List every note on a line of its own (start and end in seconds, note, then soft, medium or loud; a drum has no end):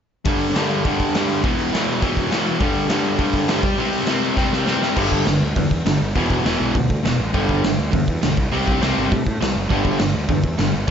0.25 0.55 G2 medium
0.25 0.55 D3 medium
0.25 0.55 G3 medium
0.25 kick loud
0.25 open hi-hat medium
0.41 open hi-hat medium
0.55 0.84 G2 medium
0.55 0.84 D3 medium
0.55 0.86 G3 medium
0.55 snare loud
0.55 open hi-hat medium
0.71 open hi-hat medium
0.85 1.14 G2 medium
0.85 1.15 D3 medium
0.85 1.14 G3 medium
0.85 kick medium
0.85 open hi-hat medium
1.00 kick medium
1.00 open hi-hat medium
1.15 1.42 G2 medium
1.15 1.43 D3 medium
1.15 1.44 G3 medium
1.15 snare loud
1.15 open hi-hat medium
1.29 open hi-hat medium
1.43 1.74 E2 medium
1.43 1.73 B2 loud
1.43 1.73 E3 medium
1.43 kick loud
1.43 open hi-hat medium
1.59 open hi-hat medium
1.74 2.00 E2 medium
1.74 2.01 B2 medium
1.74 2.01 E3 medium
1.74 snare loud
1.74 open hi-hat medium
1.89 open hi-hat soft
2.01 2.31 E2 medium
2.01 2.31 B2 medium
2.01 2.30 E3 loud
2.01 kick loud
2.01 open hi-hat medium
2.17 kick medium
2.17 open hi-hat soft
2.31 2.60 E2 medium
2.31 2.60 B2 medium
2.31 2.60 E3 medium
2.31 snare loud
2.31 open hi-hat medium
2.46 open hi-hat medium
2.60 2.88 G2 medium
2.60 2.88 D3 loud
2.60 2.88 G3 loud
2.60 kick loud
2.60 open hi-hat medium
2.75 open hi-hat medium
2.88 3.17 G2 medium
2.88 3.17 D3 medium
2.88 3.18 G3 medium
2.88 snare loud
2.88 open hi-hat medium
3.05 open hi-hat medium
3.18 3.48 G2 medium
3.18 3.47 D3 medium
3.18 3.48 G3 loud
3.18 kick medium
3.18 open hi-hat medium
3.33 kick medium
3.33 open hi-hat medium
3.48 3.64 G2 medium
3.48 3.63 D3 medium
3.48 3.79 G3 medium
3.48 snare loud
3.48 open hi-hat medium
3.63 kick medium
3.63 open hi-hat medium
3.78 4.07 C3 medium
3.78 4.08 G3 loud
3.78 4.06 C4 loud
3.78 open hi-hat medium
3.93 open hi-hat medium
4.06 4.35 C3 medium
4.06 4.35 G3 medium
4.06 4.36 C4 medium
4.06 snare loud
4.06 open hi-hat medium
4.21 open hi-hat medium
4.36 4.66 C3 medium
4.36 4.67 G3 medium
4.36 4.66 C4 loud
4.36 kick medium
4.36 snare medium
4.53 snare medium
4.67 4.96 C3 medium
4.67 4.95 G3 medium
4.67 4.96 C4 medium
4.67 snare medium
4.82 snare medium
4.95 5.07 G1 medium
4.95 5.25 G2 medium
4.95 5.26 D3 loud
4.95 5.25 G3 loud
4.95 kick loud
4.95 crash loud
5.12 5.22 G1 medium
5.12 kick medium
5.26 5.37 G1 medium
5.26 5.41 G2 medium
5.26 5.41 D3 medium
5.26 snare loud
5.26 open hi-hat medium
5.42 5.52 D2 medium
5.56 5.66 E2 medium
5.56 5.70 G2 medium
5.56 5.71 D3 medium
5.56 kick loud
5.56 open hi-hat medium
5.71 5.81 E2 medium
5.71 kick medium
5.86 5.96 G1 medium
5.86 5.99 G2 medium
5.86 6.00 D3 medium
5.86 snare loud
5.86 open hi-hat medium
6.02 6.11 G1 medium
6.15 6.26 E1 medium
6.15 6.43 E2 medium
6.15 6.44 B2 medium
6.15 6.45 E3 medium
6.15 kick loud
6.15 open hi-hat medium
6.30 6.40 E1 medium
6.30 kick medium
6.45 6.55 E1 medium
6.45 6.74 E2 medium
6.45 6.74 B2 medium
6.45 6.75 E3 medium
6.45 snare loud
6.45 open hi-hat medium
6.61 6.70 B1 medium
6.75 6.85 D2 medium
6.75 6.89 E2 medium
6.75 6.89 B2 medium
6.75 kick loud
6.75 open hi-hat soft
6.90 7.00 D2 medium
6.90 kick medium
7.03 7.15 E1 medium
7.03 7.17 E2 medium
7.03 7.17 B2 medium
7.03 snare loud
7.03 open hi-hat soft
7.20 7.30 A1 medium
7.33 7.44 G1 medium
7.33 7.62 G2 medium
7.33 7.63 D3 medium
7.33 7.63 G3 loud
7.33 kick loud
7.33 open hi-hat medium
7.49 7.59 G1 medium
7.49 kick medium
7.64 7.74 G1 medium
7.64 7.77 G2 medium
7.64 7.77 D3 medium
7.64 snare loud
7.64 open hi-hat medium
7.79 7.89 D2 medium
7.93 8.03 E2 loud
7.93 8.06 G2 medium
7.93 8.07 D3 medium
7.93 kick loud
7.93 open hi-hat medium
8.08 8.18 E2 medium
8.08 kick medium
8.22 8.33 B1 medium
8.22 8.36 G2 medium
8.22 8.36 D3 medium
8.22 snare loud
8.22 open hi-hat medium
8.37 8.48 C2 medium
8.37 kick medium
8.52 8.62 C2 medium
8.52 8.80 C3 medium
8.52 8.81 G3 loud
8.52 8.81 C4 loud
8.52 open hi-hat medium
8.68 8.78 C2 medium
8.68 kick medium
8.81 8.93 C2 medium
8.81 9.10 C3 medium
8.81 9.11 G3 medium
8.81 9.10 C4 medium
8.81 snare loud
8.81 open hi-hat medium
8.98 9.07 G1 medium
9.12 9.22 A2 medium
9.12 9.25 C3 medium
9.12 9.26 G3 medium
9.12 kick loud
9.12 open hi-hat medium
9.27 9.37 A2 medium
9.27 kick medium
9.41 9.52 C2 medium
9.41 9.54 C3 medium
9.41 9.54 G3 medium
9.41 snare loud
9.41 open hi-hat soft
9.56 9.66 F#1 medium
9.70 9.81 G1 medium
9.70 9.98 G2 medium
9.70 9.98 D3 medium
9.70 10.00 G3 loud
9.70 kick loud
9.70 open hi-hat medium
9.85 9.95 G1 medium
9.85 kick medium
9.99 10.10 G1 medium
9.99 10.13 G2 medium
9.99 10.13 D3 medium
9.99 snare loud
9.99 open hi-hat medium
10.15 10.25 D2 medium
10.28 10.39 E2 medium
10.28 10.43 G2 medium
10.28 10.43 D3 medium
10.28 kick loud
10.28 open hi-hat soft
10.44 10.54 E2 medium
10.44 kick medium
10.58 10.69 G1 medium
10.58 10.73 G2 medium
10.58 10.73 D3 medium
10.58 snare loud
10.58 open hi-hat medium
10.74 10.84 G1 medium